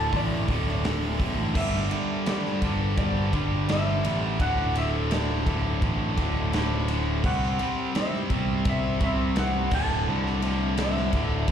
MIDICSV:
0, 0, Header, 1, 6, 480
1, 0, Start_track
1, 0, Tempo, 710059
1, 1051, Time_signature, 4, 2, 24, 8
1, 7784, End_track
2, 0, Start_track
2, 0, Title_t, "Electric slide guitar"
2, 0, Program_c, 0, 29
2, 0, Note_on_c, 0, 81, 89
2, 96, Note_off_c, 0, 81, 0
2, 111, Note_on_c, 0, 74, 110
2, 1034, Note_off_c, 0, 74, 0
2, 1060, Note_on_c, 0, 76, 88
2, 1547, Note_on_c, 0, 74, 80
2, 1550, Note_off_c, 0, 76, 0
2, 1993, Note_off_c, 0, 74, 0
2, 2018, Note_on_c, 0, 74, 90
2, 2499, Note_on_c, 0, 76, 92
2, 2510, Note_off_c, 0, 74, 0
2, 2949, Note_off_c, 0, 76, 0
2, 2982, Note_on_c, 0, 78, 108
2, 3201, Note_off_c, 0, 78, 0
2, 3232, Note_on_c, 0, 76, 96
2, 3465, Note_off_c, 0, 76, 0
2, 3468, Note_on_c, 0, 74, 74
2, 4394, Note_off_c, 0, 74, 0
2, 4905, Note_on_c, 0, 78, 87
2, 5352, Note_off_c, 0, 78, 0
2, 5383, Note_on_c, 0, 76, 77
2, 5869, Note_off_c, 0, 76, 0
2, 5877, Note_on_c, 0, 76, 89
2, 6102, Note_off_c, 0, 76, 0
2, 6110, Note_on_c, 0, 76, 86
2, 6347, Note_off_c, 0, 76, 0
2, 6348, Note_on_c, 0, 78, 96
2, 6563, Note_off_c, 0, 78, 0
2, 6588, Note_on_c, 0, 81, 107
2, 7306, Note_on_c, 0, 76, 72
2, 7318, Note_off_c, 0, 81, 0
2, 7784, Note_off_c, 0, 76, 0
2, 7784, End_track
3, 0, Start_track
3, 0, Title_t, "Distorted electric guitar"
3, 0, Program_c, 1, 30
3, 0, Note_on_c, 1, 38, 89
3, 0, Note_on_c, 1, 45, 92
3, 0, Note_on_c, 1, 50, 93
3, 79, Note_off_c, 1, 38, 0
3, 83, Note_off_c, 1, 45, 0
3, 87, Note_off_c, 1, 50, 0
3, 87, Note_on_c, 1, 38, 94
3, 91, Note_on_c, 1, 45, 105
3, 96, Note_on_c, 1, 50, 109
3, 319, Note_off_c, 1, 38, 0
3, 323, Note_off_c, 1, 45, 0
3, 327, Note_off_c, 1, 50, 0
3, 327, Note_on_c, 1, 38, 80
3, 332, Note_on_c, 1, 45, 88
3, 335, Note_on_c, 1, 50, 96
3, 562, Note_off_c, 1, 38, 0
3, 566, Note_off_c, 1, 45, 0
3, 569, Note_off_c, 1, 50, 0
3, 570, Note_on_c, 1, 38, 95
3, 574, Note_on_c, 1, 45, 99
3, 577, Note_on_c, 1, 50, 98
3, 798, Note_off_c, 1, 38, 0
3, 803, Note_off_c, 1, 45, 0
3, 806, Note_on_c, 1, 38, 82
3, 807, Note_off_c, 1, 50, 0
3, 811, Note_on_c, 1, 45, 93
3, 815, Note_on_c, 1, 50, 91
3, 1034, Note_off_c, 1, 38, 0
3, 1036, Note_off_c, 1, 45, 0
3, 1038, Note_off_c, 1, 50, 0
3, 1051, Note_on_c, 1, 43, 100
3, 1054, Note_on_c, 1, 50, 95
3, 1058, Note_on_c, 1, 55, 100
3, 1282, Note_off_c, 1, 43, 0
3, 1287, Note_off_c, 1, 50, 0
3, 1290, Note_off_c, 1, 55, 0
3, 1290, Note_on_c, 1, 43, 82
3, 1295, Note_on_c, 1, 50, 84
3, 1298, Note_on_c, 1, 55, 97
3, 1524, Note_off_c, 1, 43, 0
3, 1529, Note_off_c, 1, 50, 0
3, 1532, Note_off_c, 1, 55, 0
3, 1532, Note_on_c, 1, 43, 102
3, 1537, Note_on_c, 1, 50, 108
3, 1540, Note_on_c, 1, 55, 104
3, 1764, Note_off_c, 1, 43, 0
3, 1769, Note_off_c, 1, 50, 0
3, 1771, Note_off_c, 1, 55, 0
3, 1773, Note_on_c, 1, 43, 78
3, 1777, Note_on_c, 1, 50, 95
3, 1780, Note_on_c, 1, 55, 95
3, 2005, Note_off_c, 1, 43, 0
3, 2009, Note_off_c, 1, 50, 0
3, 2011, Note_off_c, 1, 55, 0
3, 2013, Note_on_c, 1, 43, 94
3, 2017, Note_on_c, 1, 50, 96
3, 2019, Note_on_c, 1, 55, 103
3, 2245, Note_off_c, 1, 43, 0
3, 2249, Note_off_c, 1, 50, 0
3, 2252, Note_off_c, 1, 55, 0
3, 2253, Note_on_c, 1, 43, 82
3, 2258, Note_on_c, 1, 50, 85
3, 2260, Note_on_c, 1, 55, 98
3, 2485, Note_off_c, 1, 43, 0
3, 2489, Note_off_c, 1, 50, 0
3, 2491, Note_off_c, 1, 55, 0
3, 2493, Note_on_c, 1, 43, 100
3, 2497, Note_on_c, 1, 50, 109
3, 2499, Note_on_c, 1, 55, 113
3, 2724, Note_off_c, 1, 43, 0
3, 2729, Note_off_c, 1, 50, 0
3, 2732, Note_off_c, 1, 55, 0
3, 2732, Note_on_c, 1, 43, 87
3, 2737, Note_on_c, 1, 50, 91
3, 2740, Note_on_c, 1, 55, 89
3, 2958, Note_off_c, 1, 43, 0
3, 2961, Note_off_c, 1, 50, 0
3, 2962, Note_off_c, 1, 55, 0
3, 2978, Note_on_c, 1, 38, 90
3, 2980, Note_on_c, 1, 45, 102
3, 2984, Note_on_c, 1, 50, 106
3, 3204, Note_off_c, 1, 38, 0
3, 3209, Note_off_c, 1, 45, 0
3, 3212, Note_off_c, 1, 50, 0
3, 3212, Note_on_c, 1, 38, 84
3, 3217, Note_on_c, 1, 45, 87
3, 3220, Note_on_c, 1, 50, 94
3, 3450, Note_off_c, 1, 38, 0
3, 3453, Note_off_c, 1, 45, 0
3, 3456, Note_off_c, 1, 50, 0
3, 3458, Note_on_c, 1, 38, 100
3, 3461, Note_on_c, 1, 45, 109
3, 3464, Note_on_c, 1, 50, 111
3, 3687, Note_off_c, 1, 38, 0
3, 3693, Note_off_c, 1, 45, 0
3, 3695, Note_on_c, 1, 38, 75
3, 3697, Note_off_c, 1, 50, 0
3, 3701, Note_on_c, 1, 45, 97
3, 3705, Note_on_c, 1, 50, 102
3, 3927, Note_off_c, 1, 38, 0
3, 3931, Note_off_c, 1, 45, 0
3, 3933, Note_off_c, 1, 50, 0
3, 3935, Note_on_c, 1, 38, 101
3, 3939, Note_on_c, 1, 45, 105
3, 3941, Note_on_c, 1, 50, 102
3, 4168, Note_off_c, 1, 38, 0
3, 4171, Note_off_c, 1, 45, 0
3, 4175, Note_off_c, 1, 50, 0
3, 4176, Note_on_c, 1, 38, 81
3, 4179, Note_on_c, 1, 45, 91
3, 4183, Note_on_c, 1, 50, 91
3, 4405, Note_off_c, 1, 38, 0
3, 4410, Note_off_c, 1, 45, 0
3, 4413, Note_on_c, 1, 38, 94
3, 4414, Note_off_c, 1, 50, 0
3, 4418, Note_on_c, 1, 45, 101
3, 4422, Note_on_c, 1, 50, 104
3, 4648, Note_off_c, 1, 38, 0
3, 4651, Note_off_c, 1, 45, 0
3, 4654, Note_off_c, 1, 50, 0
3, 4656, Note_on_c, 1, 38, 91
3, 4659, Note_on_c, 1, 45, 94
3, 4662, Note_on_c, 1, 50, 94
3, 4880, Note_off_c, 1, 38, 0
3, 4882, Note_off_c, 1, 45, 0
3, 4884, Note_off_c, 1, 50, 0
3, 4892, Note_on_c, 1, 48, 88
3, 4896, Note_on_c, 1, 55, 102
3, 4898, Note_on_c, 1, 60, 97
3, 5126, Note_off_c, 1, 48, 0
3, 5129, Note_off_c, 1, 55, 0
3, 5133, Note_off_c, 1, 60, 0
3, 5134, Note_on_c, 1, 48, 85
3, 5137, Note_on_c, 1, 55, 96
3, 5141, Note_on_c, 1, 60, 95
3, 5368, Note_off_c, 1, 48, 0
3, 5373, Note_off_c, 1, 55, 0
3, 5376, Note_on_c, 1, 48, 92
3, 5378, Note_off_c, 1, 60, 0
3, 5381, Note_on_c, 1, 55, 92
3, 5386, Note_on_c, 1, 60, 109
3, 5605, Note_off_c, 1, 48, 0
3, 5610, Note_off_c, 1, 55, 0
3, 5610, Note_off_c, 1, 60, 0
3, 5613, Note_on_c, 1, 48, 81
3, 5618, Note_on_c, 1, 55, 84
3, 5618, Note_on_c, 1, 60, 98
3, 5843, Note_off_c, 1, 48, 0
3, 5847, Note_off_c, 1, 55, 0
3, 5849, Note_off_c, 1, 60, 0
3, 5851, Note_on_c, 1, 48, 90
3, 5855, Note_on_c, 1, 55, 99
3, 5857, Note_on_c, 1, 60, 99
3, 6081, Note_off_c, 1, 48, 0
3, 6087, Note_off_c, 1, 55, 0
3, 6089, Note_on_c, 1, 48, 85
3, 6090, Note_off_c, 1, 60, 0
3, 6095, Note_on_c, 1, 55, 87
3, 6098, Note_on_c, 1, 60, 93
3, 6319, Note_off_c, 1, 48, 0
3, 6323, Note_off_c, 1, 55, 0
3, 6327, Note_on_c, 1, 48, 101
3, 6328, Note_off_c, 1, 60, 0
3, 6331, Note_on_c, 1, 55, 99
3, 6336, Note_on_c, 1, 60, 107
3, 6554, Note_off_c, 1, 48, 0
3, 6556, Note_off_c, 1, 55, 0
3, 6559, Note_off_c, 1, 60, 0
3, 6568, Note_on_c, 1, 38, 98
3, 6573, Note_on_c, 1, 45, 110
3, 6574, Note_on_c, 1, 50, 107
3, 6800, Note_off_c, 1, 38, 0
3, 6805, Note_off_c, 1, 45, 0
3, 6807, Note_off_c, 1, 50, 0
3, 6808, Note_on_c, 1, 38, 88
3, 6813, Note_on_c, 1, 45, 101
3, 6815, Note_on_c, 1, 50, 107
3, 7038, Note_off_c, 1, 38, 0
3, 7042, Note_off_c, 1, 45, 0
3, 7046, Note_on_c, 1, 38, 88
3, 7047, Note_off_c, 1, 50, 0
3, 7050, Note_on_c, 1, 45, 92
3, 7055, Note_on_c, 1, 50, 104
3, 7279, Note_off_c, 1, 38, 0
3, 7282, Note_off_c, 1, 45, 0
3, 7285, Note_off_c, 1, 50, 0
3, 7287, Note_on_c, 1, 38, 90
3, 7290, Note_on_c, 1, 45, 108
3, 7293, Note_on_c, 1, 50, 100
3, 7513, Note_off_c, 1, 38, 0
3, 7517, Note_off_c, 1, 45, 0
3, 7520, Note_off_c, 1, 50, 0
3, 7522, Note_on_c, 1, 38, 85
3, 7525, Note_on_c, 1, 45, 82
3, 7528, Note_on_c, 1, 50, 95
3, 7754, Note_off_c, 1, 38, 0
3, 7758, Note_off_c, 1, 45, 0
3, 7760, Note_off_c, 1, 50, 0
3, 7763, Note_on_c, 1, 38, 94
3, 7784, Note_off_c, 1, 38, 0
3, 7784, End_track
4, 0, Start_track
4, 0, Title_t, "Overdriven electric guitar"
4, 0, Program_c, 2, 29
4, 0, Note_on_c, 2, 38, 86
4, 0, Note_on_c, 2, 45, 100
4, 0, Note_on_c, 2, 50, 106
4, 70, Note_off_c, 2, 38, 0
4, 75, Note_off_c, 2, 45, 0
4, 79, Note_off_c, 2, 50, 0
4, 7784, End_track
5, 0, Start_track
5, 0, Title_t, "Picked electric bass"
5, 0, Program_c, 3, 34
5, 0, Note_on_c, 3, 26, 91
5, 77, Note_off_c, 3, 26, 0
5, 87, Note_on_c, 3, 33, 95
5, 316, Note_off_c, 3, 33, 0
5, 327, Note_on_c, 3, 26, 82
5, 784, Note_off_c, 3, 26, 0
5, 808, Note_on_c, 3, 35, 84
5, 917, Note_off_c, 3, 35, 0
5, 936, Note_on_c, 3, 33, 82
5, 1042, Note_off_c, 3, 33, 0
5, 1051, Note_on_c, 3, 31, 112
5, 1278, Note_off_c, 3, 31, 0
5, 1773, Note_on_c, 3, 31, 92
5, 2000, Note_off_c, 3, 31, 0
5, 2012, Note_on_c, 3, 31, 98
5, 2240, Note_off_c, 3, 31, 0
5, 2251, Note_on_c, 3, 31, 95
5, 2707, Note_off_c, 3, 31, 0
5, 2738, Note_on_c, 3, 33, 98
5, 2963, Note_off_c, 3, 33, 0
5, 2973, Note_on_c, 3, 26, 98
5, 3667, Note_off_c, 3, 26, 0
5, 3693, Note_on_c, 3, 26, 94
5, 3921, Note_off_c, 3, 26, 0
5, 3934, Note_on_c, 3, 33, 96
5, 4161, Note_off_c, 3, 33, 0
5, 4175, Note_on_c, 3, 26, 91
5, 4867, Note_off_c, 3, 26, 0
5, 4894, Note_on_c, 3, 36, 118
5, 5121, Note_off_c, 3, 36, 0
5, 5613, Note_on_c, 3, 36, 92
5, 5840, Note_off_c, 3, 36, 0
5, 5853, Note_on_c, 3, 36, 96
5, 6080, Note_off_c, 3, 36, 0
5, 6088, Note_on_c, 3, 36, 97
5, 6544, Note_off_c, 3, 36, 0
5, 6570, Note_on_c, 3, 26, 100
5, 6797, Note_off_c, 3, 26, 0
5, 6810, Note_on_c, 3, 36, 102
5, 7500, Note_off_c, 3, 36, 0
5, 7525, Note_on_c, 3, 26, 97
5, 7753, Note_off_c, 3, 26, 0
5, 7761, Note_on_c, 3, 33, 96
5, 7784, Note_off_c, 3, 33, 0
5, 7784, End_track
6, 0, Start_track
6, 0, Title_t, "Drums"
6, 86, Note_on_c, 9, 36, 86
6, 86, Note_on_c, 9, 46, 81
6, 153, Note_off_c, 9, 46, 0
6, 154, Note_off_c, 9, 36, 0
6, 327, Note_on_c, 9, 36, 89
6, 328, Note_on_c, 9, 46, 62
6, 395, Note_off_c, 9, 36, 0
6, 396, Note_off_c, 9, 46, 0
6, 457, Note_on_c, 9, 38, 33
6, 524, Note_off_c, 9, 38, 0
6, 568, Note_on_c, 9, 46, 82
6, 575, Note_on_c, 9, 38, 115
6, 635, Note_off_c, 9, 46, 0
6, 643, Note_off_c, 9, 38, 0
6, 809, Note_on_c, 9, 36, 92
6, 812, Note_on_c, 9, 46, 65
6, 877, Note_off_c, 9, 36, 0
6, 880, Note_off_c, 9, 46, 0
6, 1050, Note_on_c, 9, 36, 109
6, 1051, Note_on_c, 9, 49, 117
6, 1117, Note_off_c, 9, 36, 0
6, 1118, Note_off_c, 9, 49, 0
6, 1178, Note_on_c, 9, 38, 33
6, 1246, Note_off_c, 9, 38, 0
6, 1290, Note_on_c, 9, 51, 76
6, 1358, Note_off_c, 9, 51, 0
6, 1530, Note_on_c, 9, 51, 112
6, 1537, Note_on_c, 9, 38, 117
6, 1597, Note_off_c, 9, 51, 0
6, 1605, Note_off_c, 9, 38, 0
6, 1658, Note_on_c, 9, 38, 34
6, 1726, Note_off_c, 9, 38, 0
6, 1770, Note_on_c, 9, 51, 79
6, 1771, Note_on_c, 9, 36, 80
6, 1837, Note_off_c, 9, 51, 0
6, 1838, Note_off_c, 9, 36, 0
6, 2011, Note_on_c, 9, 51, 98
6, 2012, Note_on_c, 9, 36, 108
6, 2079, Note_off_c, 9, 36, 0
6, 2079, Note_off_c, 9, 51, 0
6, 2251, Note_on_c, 9, 36, 85
6, 2252, Note_on_c, 9, 51, 84
6, 2319, Note_off_c, 9, 36, 0
6, 2320, Note_off_c, 9, 51, 0
6, 2492, Note_on_c, 9, 51, 109
6, 2500, Note_on_c, 9, 38, 116
6, 2560, Note_off_c, 9, 51, 0
6, 2567, Note_off_c, 9, 38, 0
6, 2735, Note_on_c, 9, 51, 90
6, 2802, Note_off_c, 9, 51, 0
6, 2972, Note_on_c, 9, 51, 108
6, 2973, Note_on_c, 9, 36, 114
6, 3040, Note_off_c, 9, 51, 0
6, 3041, Note_off_c, 9, 36, 0
6, 3214, Note_on_c, 9, 51, 78
6, 3282, Note_off_c, 9, 51, 0
6, 3453, Note_on_c, 9, 51, 112
6, 3461, Note_on_c, 9, 38, 119
6, 3521, Note_off_c, 9, 51, 0
6, 3529, Note_off_c, 9, 38, 0
6, 3695, Note_on_c, 9, 36, 83
6, 3696, Note_on_c, 9, 51, 77
6, 3762, Note_off_c, 9, 36, 0
6, 3763, Note_off_c, 9, 51, 0
6, 3934, Note_on_c, 9, 51, 94
6, 3935, Note_on_c, 9, 36, 112
6, 4001, Note_off_c, 9, 51, 0
6, 4002, Note_off_c, 9, 36, 0
6, 4174, Note_on_c, 9, 51, 81
6, 4175, Note_on_c, 9, 36, 80
6, 4241, Note_off_c, 9, 51, 0
6, 4243, Note_off_c, 9, 36, 0
6, 4416, Note_on_c, 9, 51, 103
6, 4423, Note_on_c, 9, 38, 112
6, 4483, Note_off_c, 9, 51, 0
6, 4491, Note_off_c, 9, 38, 0
6, 4653, Note_on_c, 9, 51, 80
6, 4721, Note_off_c, 9, 51, 0
6, 4893, Note_on_c, 9, 49, 102
6, 4894, Note_on_c, 9, 36, 113
6, 4961, Note_off_c, 9, 49, 0
6, 4962, Note_off_c, 9, 36, 0
6, 5022, Note_on_c, 9, 38, 33
6, 5089, Note_off_c, 9, 38, 0
6, 5132, Note_on_c, 9, 51, 76
6, 5199, Note_off_c, 9, 51, 0
6, 5374, Note_on_c, 9, 51, 107
6, 5381, Note_on_c, 9, 38, 124
6, 5441, Note_off_c, 9, 51, 0
6, 5449, Note_off_c, 9, 38, 0
6, 5499, Note_on_c, 9, 38, 35
6, 5567, Note_off_c, 9, 38, 0
6, 5610, Note_on_c, 9, 51, 78
6, 5612, Note_on_c, 9, 36, 87
6, 5678, Note_off_c, 9, 51, 0
6, 5679, Note_off_c, 9, 36, 0
6, 5848, Note_on_c, 9, 51, 100
6, 5851, Note_on_c, 9, 36, 113
6, 5916, Note_off_c, 9, 51, 0
6, 5918, Note_off_c, 9, 36, 0
6, 6087, Note_on_c, 9, 51, 79
6, 6090, Note_on_c, 9, 36, 87
6, 6155, Note_off_c, 9, 51, 0
6, 6157, Note_off_c, 9, 36, 0
6, 6326, Note_on_c, 9, 51, 116
6, 6334, Note_on_c, 9, 38, 123
6, 6394, Note_off_c, 9, 51, 0
6, 6401, Note_off_c, 9, 38, 0
6, 6565, Note_on_c, 9, 57, 113
6, 6569, Note_on_c, 9, 36, 117
6, 6633, Note_off_c, 9, 57, 0
6, 6636, Note_off_c, 9, 36, 0
6, 6936, Note_on_c, 9, 38, 33
6, 7004, Note_off_c, 9, 38, 0
6, 7046, Note_on_c, 9, 51, 79
6, 7114, Note_off_c, 9, 51, 0
6, 7284, Note_on_c, 9, 51, 116
6, 7291, Note_on_c, 9, 38, 118
6, 7352, Note_off_c, 9, 51, 0
6, 7359, Note_off_c, 9, 38, 0
6, 7412, Note_on_c, 9, 38, 33
6, 7479, Note_off_c, 9, 38, 0
6, 7522, Note_on_c, 9, 51, 81
6, 7523, Note_on_c, 9, 36, 79
6, 7589, Note_off_c, 9, 51, 0
6, 7591, Note_off_c, 9, 36, 0
6, 7759, Note_on_c, 9, 51, 104
6, 7761, Note_on_c, 9, 36, 105
6, 7784, Note_off_c, 9, 36, 0
6, 7784, Note_off_c, 9, 51, 0
6, 7784, End_track
0, 0, End_of_file